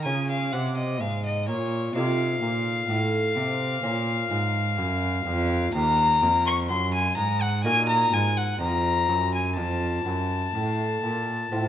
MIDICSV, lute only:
0, 0, Header, 1, 2, 480
1, 0, Start_track
1, 0, Key_signature, -5, "minor"
1, 0, Tempo, 943396
1, 993, Time_signature, 4, 2, 24, 8
1, 2430, Tempo, 961538
1, 5878, End_track
2, 0, Start_track
2, 0, Title_t, "Lute"
2, 0, Program_c, 0, 24
2, 30, Note_on_c, 0, 49, 47
2, 30, Note_on_c, 0, 61, 39
2, 33, Note_on_c, 0, 65, 39
2, 251, Note_off_c, 0, 49, 0
2, 273, Note_on_c, 0, 48, 43
2, 493, Note_off_c, 0, 48, 0
2, 515, Note_on_c, 0, 44, 44
2, 734, Note_off_c, 0, 44, 0
2, 754, Note_on_c, 0, 46, 45
2, 972, Note_off_c, 0, 61, 0
2, 973, Note_off_c, 0, 46, 0
2, 974, Note_off_c, 0, 65, 0
2, 994, Note_on_c, 0, 48, 47
2, 994, Note_on_c, 0, 63, 38
2, 997, Note_on_c, 0, 65, 35
2, 999, Note_on_c, 0, 69, 38
2, 1212, Note_off_c, 0, 48, 0
2, 1232, Note_on_c, 0, 46, 50
2, 1450, Note_off_c, 0, 46, 0
2, 1471, Note_on_c, 0, 45, 51
2, 1690, Note_off_c, 0, 45, 0
2, 1712, Note_on_c, 0, 48, 48
2, 1930, Note_off_c, 0, 48, 0
2, 1930, Note_off_c, 0, 63, 0
2, 1931, Note_off_c, 0, 65, 0
2, 1933, Note_off_c, 0, 69, 0
2, 1949, Note_on_c, 0, 46, 54
2, 1950, Note_on_c, 0, 61, 44
2, 1953, Note_on_c, 0, 65, 43
2, 1957, Note_on_c, 0, 70, 48
2, 2170, Note_off_c, 0, 46, 0
2, 2192, Note_on_c, 0, 44, 52
2, 2412, Note_off_c, 0, 44, 0
2, 2433, Note_on_c, 0, 42, 55
2, 2652, Note_off_c, 0, 42, 0
2, 2674, Note_on_c, 0, 41, 50
2, 2892, Note_off_c, 0, 61, 0
2, 2894, Note_off_c, 0, 41, 0
2, 2895, Note_off_c, 0, 65, 0
2, 2895, Note_off_c, 0, 70, 0
2, 2916, Note_on_c, 0, 39, 55
2, 3133, Note_off_c, 0, 39, 0
2, 3152, Note_on_c, 0, 41, 55
2, 3368, Note_off_c, 0, 41, 0
2, 3390, Note_on_c, 0, 42, 57
2, 3606, Note_off_c, 0, 42, 0
2, 3625, Note_on_c, 0, 44, 53
2, 3842, Note_off_c, 0, 44, 0
2, 3862, Note_on_c, 0, 46, 65
2, 3863, Note_on_c, 0, 63, 47
2, 3864, Note_on_c, 0, 66, 46
2, 3869, Note_on_c, 0, 70, 55
2, 4081, Note_off_c, 0, 46, 0
2, 4102, Note_on_c, 0, 44, 52
2, 4321, Note_off_c, 0, 44, 0
2, 4340, Note_on_c, 0, 41, 55
2, 4561, Note_off_c, 0, 41, 0
2, 4584, Note_on_c, 0, 42, 47
2, 4805, Note_off_c, 0, 63, 0
2, 4806, Note_off_c, 0, 42, 0
2, 4806, Note_off_c, 0, 66, 0
2, 4807, Note_off_c, 0, 70, 0
2, 4824, Note_on_c, 0, 41, 45
2, 5047, Note_off_c, 0, 41, 0
2, 5067, Note_on_c, 0, 42, 48
2, 5289, Note_off_c, 0, 42, 0
2, 5312, Note_on_c, 0, 45, 43
2, 5532, Note_off_c, 0, 45, 0
2, 5554, Note_on_c, 0, 46, 44
2, 5774, Note_off_c, 0, 46, 0
2, 5796, Note_on_c, 0, 45, 48
2, 5797, Note_on_c, 0, 60, 38
2, 5798, Note_on_c, 0, 65, 41
2, 5878, Note_off_c, 0, 45, 0
2, 5878, Note_off_c, 0, 60, 0
2, 5878, Note_off_c, 0, 65, 0
2, 5878, End_track
0, 0, End_of_file